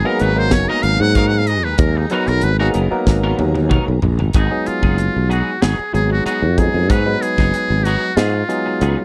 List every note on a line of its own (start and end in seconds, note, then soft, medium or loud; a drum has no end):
0.00 4.30 F#3 medium
0.00 4.30 G#3 medium
0.00 4.30 G#4 medium
0.00 4.30 A#5 medium
0.05 0.31 F#3 medium
0.05 0.31 A#3 medium
0.05 0.31 B3 medium
0.05 0.20 B3 soft
0.05 0.31 D#4 medium
0.05 0.20 D#4 soft
0.05 0.31 G#4 medium
0.05 0.21 A#4 medium
0.05 0.23 A#4 medium
0.19 0.52 G#1 loud
0.19 0.40 F#3 medium
0.19 0.40 B3 medium
0.19 0.41 D#4 medium
0.19 0.41 A#4 medium
0.19 0.40 B4 medium
0.19 closed hi-hat medium
0.36 1.41 F#3 medium
0.36 1.41 A#3 medium
0.36 1.41 B3 medium
0.36 1.41 D#4 medium
0.36 1.41 A#4 medium
0.36 0.54 C5 medium
0.51 0.65 F#1 loud
0.51 0.70 C#5 medium
0.51 muted clean electric guitar stroke soft
0.51 kick medium
0.51 snare loud
0.51 closed hi-hat medium
0.68 0.84 F#3 medium
0.68 0.85 B3 medium
0.68 0.85 D#4 medium
0.68 0.85 A#4 medium
0.68 0.84 D#5 medium
0.83 0.97 G#1 medium
0.83 1.03 F5 loud
0.83 closed hi-hat medium
1.00 1.64 G#2 medium
1.00 1.17 F#5 loud
1.00 muted clean electric guitar stroke soft
1.15 1.33 F#3 medium
1.15 1.33 B3 medium
1.15 1.33 D#4 medium
1.15 1.32 A#4 medium
1.15 1.29 F5 loud
1.15 kick medium
1.15 closed hi-hat medium
1.28 1.40 F#5 loud
1.34 muted clean electric guitar stroke soft
1.38 1.49 F5 medium
1.47 1.66 D#5 loud
1.47 muted clean electric guitar stroke soft
1.47 closed hi-hat medium
1.64 1.77 D#2 medium
1.64 1.80 B4 medium
1.64 muted clean electric guitar stroke soft
1.78 2.04 D#2 loud
1.78 1.99 A#4 medium
1.78 kick loud
1.78 closed hi-hat medium
1.97 2.13 D#4 medium
1.97 muted clean electric guitar stroke soft
2.10 2.51 F#3 medium
2.10 2.28 F#3 medium
2.10 2.51 B3 medium
2.10 2.28 B3 medium
2.10 2.51 D#4 medium
2.10 2.28 D#4 medium
2.10 2.29 F#4 medium
2.10 2.51 A#4 medium
2.10 2.27 A#4 loud
2.10 2.51 B4 medium
2.10 closed hi-hat medium
2.26 2.40 B1 medium
2.26 2.45 A#4 medium
2.26 muted clean electric guitar stroke soft
2.26 snare soft
2.41 2.69 G#1 loud
2.41 2.59 B4 loud
2.41 closed hi-hat medium
2.59 2.86 F#3 medium
2.59 2.86 A#3 medium
2.59 2.86 B3 medium
2.59 2.73 B3 soft
2.59 2.74 D#4 medium
2.59 2.86 D#4 medium
2.59 2.69 F#4 medium
2.59 2.86 G#4 medium
2.59 2.75 A#4 medium
2.74 2.88 F#1 medium
2.74 2.95 F#3 medium
2.74 2.95 B3 medium
2.74 2.95 D#4 medium
2.74 2.95 A#4 medium
2.74 closed hi-hat medium
2.91 3.96 F#3 medium
2.91 3.96 A#3 medium
2.91 3.96 B3 medium
2.91 3.96 D#4 medium
2.91 3.96 A#4 loud
2.91 muted fretless electric bass stroke soft
3.07 3.32 G#1 loud
3.07 muted clean electric guitar stroke soft
3.07 kick medium
3.07 snare medium
3.24 3.37 F#3 medium
3.24 3.38 B3 medium
3.24 3.37 D#4 medium
3.24 3.38 A#4 medium
3.39 3.77 D#2 medium
3.39 muted clean electric guitar stroke soft
3.39 high tom medium
3.55 muted clean electric guitar stroke soft
3.55 high tom medium
3.69 3.87 F#3 medium
3.69 3.86 B3 medium
3.69 3.86 D#4 medium
3.69 3.85 A#4 medium
3.69 kick medium
3.69 mid tom medium
3.86 4.02 B1 medium
3.86 muted clean electric guitar stroke medium
4.02 4.18 A#1 medium
4.02 muted clean electric guitar stroke soft
4.02 floor tom medium
4.19 4.34 G#1 medium
4.19 muted clean electric guitar stroke soft
4.19 floor tom medium
4.33 4.48 G#1 loud
4.33 4.51 F#3 medium
4.33 4.51 B3 medium
4.33 4.51 D#4 medium
4.33 4.68 D#4 medium
4.33 4.50 G#4 medium
4.33 kick loud
4.33 closed hi-hat medium
4.51 5.56 F#3 medium
4.51 5.56 G#3 medium
4.51 5.56 B3 medium
4.51 5.56 D#4 medium
4.51 5.56 G#4 medium
4.51 muted clean electric guitar stroke soft
4.66 5.31 F4 medium
4.66 muted clean electric guitar stroke soft
4.66 muted fretless electric bass stroke soft
4.66 closed hi-hat medium
4.83 5.08 F#1 medium
4.83 4.97 B3 soft
4.83 4.97 D#4 soft
4.83 4.97 G#4 soft
4.83 kick medium
4.98 muted clean electric guitar stroke soft
4.98 closed hi-hat medium
5.16 5.41 B1 medium
5.29 5.50 F#3 medium
5.29 5.50 B3 medium
5.29 5.50 D#4 medium
5.29 5.63 F#4 medium
5.29 5.50 G#4 medium
5.29 closed hi-hat medium
5.62 5.76 G#1 medium
5.62 5.79 F#3 medium
5.62 5.78 B3 medium
5.62 5.78 D#4 medium
5.62 5.94 G#4 medium
5.62 5.77 G#4 medium
5.62 snare loud
5.62 closed hi-hat medium
5.79 muted clean electric guitar stroke soft
5.79 muted fretless electric bass stroke soft
5.93 6.19 G#1 medium
5.93 6.47 F#3 medium
5.93 6.47 G#3 medium
5.93 6.47 B3 medium
5.93 6.47 D#4 medium
5.93 6.47 G#4 medium
5.93 6.10 G#4 medium
5.93 muted clean electric guitar stroke soft
5.93 closed hi-hat medium
6.10 6.26 F#4 medium
6.10 muted clean electric guitar stroke soft
6.25 6.42 F#3 medium
6.25 6.42 B3 medium
6.25 6.42 D#4 medium
6.25 6.60 F#4 medium
6.25 6.42 G#4 medium
6.25 muted fretless electric bass stroke soft
6.25 closed hi-hat medium
6.42 6.67 F2 medium
6.42 muted clean electric guitar stroke soft
6.57 6.97 F#3 medium
6.57 6.97 G#3 medium
6.57 6.97 B3 medium
6.57 6.97 D#4 medium
6.57 6.98 G#4 medium
6.57 6.92 G#4 medium
6.57 muted clean electric guitar stroke soft
6.57 kick medium
6.57 closed hi-hat medium
6.74 6.90 F2 medium
6.90 7.15 G#2 loud
6.90 7.06 F#3 medium
6.90 7.06 B3 medium
6.90 7.06 D#4 medium
6.90 7.05 G#4 medium
6.90 7.23 B4 medium
6.90 kick loud
6.90 closed hi-hat medium
7.06 8.11 F#3 medium
7.06 8.11 G#3 medium
7.06 8.10 B3 medium
7.06 8.10 D#4 medium
7.06 8.11 B4 medium
7.06 muted clean electric guitar stroke soft
7.22 7.86 G#4 loud
7.22 muted clean electric guitar stroke soft
7.22 closed hi-hat medium
7.38 7.51 F#1 medium
7.38 7.54 B3 soft
7.38 7.54 D#4 soft
7.38 7.54 G#4 soft
7.38 kick medium
7.38 snare soft
7.54 muted clean electric guitar stroke soft
7.54 closed hi-hat medium
7.70 7.95 G#1 medium
7.84 8.05 F#3 medium
7.84 8.05 B3 medium
7.84 8.06 D#4 medium
7.84 8.18 F#4 medium
7.84 8.06 G#4 medium
7.84 closed hi-hat medium
8.16 8.42 G#2 medium
8.16 8.34 F#3 medium
8.16 8.33 B3 medium
8.16 8.33 D#4 medium
8.16 9.05 F4 medium
8.16 8.33 G#4 medium
8.16 snare loud
8.16 closed hi-hat medium
8.34 muted clean electric guitar stroke soft
8.49 9.02 F#3 medium
8.49 9.02 G#3 medium
8.49 9.02 B3 medium
8.49 9.01 D#4 medium
8.49 9.02 G#4 medium
8.49 muted clean electric guitar stroke soft
8.49 closed hi-hat medium
8.66 muted clean electric guitar stroke soft
8.81 8.94 C#2 medium
8.81 8.98 F#3 medium
8.81 8.97 B3 medium
8.81 8.96 D#4 medium
8.81 8.96 G#4 medium
8.81 closed hi-hat medium
8.97 muted clean electric guitar stroke soft